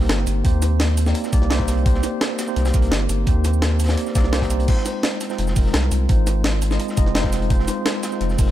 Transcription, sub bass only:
0.09 0.25 G1 loud
0.27 0.43 G1 medium
0.45 1.14 D#2 medium
1.33 2.02 C2 medium
2.56 2.72 C2 loud
2.74 2.90 C2 loud
2.92 3.08 G1 medium
3.09 3.25 G1 medium
3.27 3.96 D#2 medium
4.15 4.67 C2 medium
5.39 5.55 F1 medium
5.57 5.72 F1 loud
5.74 5.90 C2 medium
5.92 6.08 C2 medium
6.09 6.79 G#1 medium
6.98 7.67 F1 medium
8.21 8.37 F1 medium
8.39 8.51 F1 loud

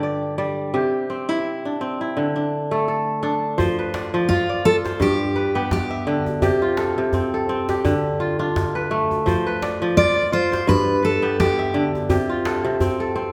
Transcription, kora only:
0.00 0.79 G2 medium
0.00 0.79 D3 medium
0.00 0.48 F4 medium
0.00 0.73 G4 medium
0.00 0.47 A4 medium
0.00 0.38 D5 medium
0.38 0.79 G3 medium
0.38 1.49 D5 medium
0.74 2.21 C3 medium
0.74 2.15 G4 medium
1.10 1.80 C4 medium
1.29 2.00 E4 medium
1.65 2.35 D4 medium
1.81 3.61 C4 medium
2.01 3.58 E4 medium
2.17 3.64 D3 medium
2.36 3.22 D4 medium
2.71 4.71 A3 medium
2.71 2.88 A4 medium
2.88 3.22 A4 medium
3.23 4.91 D4 medium
3.23 4.54 A4 medium
3.58 4.13 F3 medium
3.58 4.77 C5 medium
3.79 4.90 B4 medium
3.94 4.49 D5 medium
4.14 5.06 F3 medium
4.30 4.65 F4 medium
4.49 5.60 D5 medium
4.65 5.96 F4 medium
4.84 5.42 C5 medium
5.00 6.48 G2 medium
5.36 6.48 B4 medium
5.55 6.48 B3 medium
5.55 6.42 G4 medium
5.90 6.68 E5 medium
6.07 6.48 D3 medium
6.42 6.97 C3 medium
6.42 7.69 G4 medium
6.62 8.13 F4 medium
6.78 7.33 A4 medium
6.98 7.90 C3 medium
7.14 7.49 C4 medium
7.34 8.66 A4 medium
7.49 8.81 C4 medium
7.70 9.11 G4 medium
7.85 9.32 D3 medium
8.20 8.39 F4 medium
8.39 10.07 D4 medium
8.39 9.91 F4 medium
8.75 9.32 B4 medium
8.91 10.90 A3 medium
9.26 9.81 F3 medium
9.26 10.45 C5 medium
9.47 10.58 B4 medium
9.62 10.16 D5 medium
9.82 10.73 F3 medium
9.97 10.32 F4 medium
10.16 11.27 D5 medium
10.32 11.65 F4 medium
10.52 11.09 C5 medium
10.67 12.14 G2 medium
11.03 12.16 B4 medium
11.22 12.16 B3 medium
11.22 12.10 G4 medium
11.59 12.35 E5 medium
11.74 12.14 D3 medium
12.10 12.63 C3 medium
12.10 13.32 G4 medium
12.29 13.32 F4 medium
12.46 13.00 A4 medium
12.65 13.32 C3 medium
12.81 13.15 C4 medium
13.00 13.32 A4 medium
13.16 13.32 C4 medium

